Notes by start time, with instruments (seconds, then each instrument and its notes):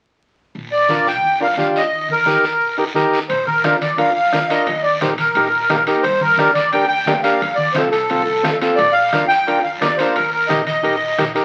0.55 upright bass A#1, high conga, long guiro
0.72 accordion D5
0.89 transistor combo organ D4 F4 A#4, high conga, short guiro
1.07 accordion G5, short guiro
1.24 upright bass F2, long guiro
1.40 transistor combo organ D4 F4 A#4, accordion F5, high conga
1.57 upright bass D2, transistor combo organ D4 F4 G4, accordion F5, high conga, short guiro
1.76 accordion D#5, short guiro
1.92 upright bass D#2, high conga, long guiro
2.09 accordion A#4, high conga
2.26 transistor combo organ D#4 G4 A#4, high conga, short guiro
2.44 short guiro
2.61 upright bass A#1, long guiro
2.77 transistor combo organ D#4 G4 A#4, high conga
2.94 upright bass D#2, transistor combo organ D#4 G4 A#4, high conga, short guiro
3.13 short guiro
3.29 upright bass A#1, accordion C5, bombo low, high conga, high timbale, long guiro
3.46 accordion A#4, high conga
3.64 upright bass F2, transistor combo organ D4 F4 A#4, bombo rim, high conga, high timbale, short guiro
3.81 accordion D5, high conga, high timbale, short guiro
3.98 upright bass F2, transistor combo organ D4 F4 A#4, accordion F5, high timbale, long guiro
4.15 accordion F5, high conga
4.32 upright bass F2, transistor combo organ D4 F4 A#4, bombo low, bombo rim, high conga, high timbale, short guiro
4.49 transistor combo organ D4 F4 A#4, accordion D#5, high timbale, short guiro
4.67 upright bass D#2, bombo low, high conga, high timbale, long guiro
4.82 accordion D5
5.01 upright bass A#1, transistor combo organ D#4 G4 A#4, accordion C5, bombo rim, high conga, high timbale, short guiro
5.18 accordion A#4, high conga, high timbale, short guiro
5.35 upright bass A#1, transistor combo organ D#4 G4 A#4, high timbale, long guiro
5.53 high conga
5.69 upright bass A#1, transistor combo organ D#4 G4 A#4, bombo low, bombo rim, high conga, high timbale, low timbale, short guiro
5.87 transistor combo organ D#4 G4 A#4, high timbale, short guiro
6.03 upright bass G2, accordion C5, bombo low, high conga, high timbale, long guiro
6.20 accordion A#4, high conga
6.37 upright bass D2, transistor combo organ D4 G4 A#4, bombo rim, high conga, high timbale, short guiro
6.54 accordion D5, high conga, high timbale, short guiro
6.72 upright bass D2, transistor combo organ D4 G4 A#4, accordion G5, high timbale, long guiro
6.88 accordion G5, high conga
7.06 upright bass D2, transistor combo organ D4 G4 A#4, bombo low, bombo rim, high conga, high timbale, low timbale, short guiro
7.23 transistor combo organ D4 G4 A#4, accordion F5, high timbale, short guiro
7.40 upright bass F2, bombo low, high conga, high timbale, long guiro
7.55 accordion D5, high conga
7.73 upright bass C2, accordion C5, bombo rim, high conga, high timbale, short guiro
7.77 transistor combo organ C4 F4 A4
7.91 accordion A4, high timbale, short guiro
8.10 upright bass C2, transistor combo organ C4 F4 A4, high timbale, long guiro
8.27 high conga
8.43 upright bass F2, transistor combo organ C4 F4 A4, bombo low, bombo rim, high conga, high timbale, low timbale, short guiro
8.61 transistor combo organ C4 F4 A4, high timbale, short guiro
8.76 upright bass A#1, accordion D5, bombo low, high conga, high timbale, long guiro
8.92 accordion F5
9.13 upright bass F2, transistor combo organ D4 F4 A#4, bombo rim, high conga, high timbale, short guiro
9.28 accordion G5, high timbale, short guiro
9.47 upright bass F2, transistor combo organ D4 F4 A#4, high timbale, long guiro
9.63 accordion F5, high conga
9.81 upright bass F2, transistor combo organ D4 F4 A#4, accordion D5, bombo low, bombo rim, high conga, high timbale, low timbale, short guiro
9.97 transistor combo organ D4 F4 A#4, accordion C5, high timbale, short guiro
10.15 upright bass D#2, accordion A#4, bombo low, high conga, high timbale, long guiro
10.32 accordion A#4
10.48 upright bass A#1, transistor combo organ D#4 G4 A#4, accordion D#5, bombo rim, high conga, high timbale, short guiro
10.66 accordion D#5, high conga, high timbale, short guiro
10.83 upright bass A#1, transistor combo organ D#4 G4 A#4, high timbale, long guiro
11.02 high conga
11.18 upright bass A#1, transistor combo organ D#4 G4 A#4, bombo low, bombo rim, high conga, high timbale, short guiro
11.35 transistor combo organ D#4 G4 A#4, high timbale, short guiro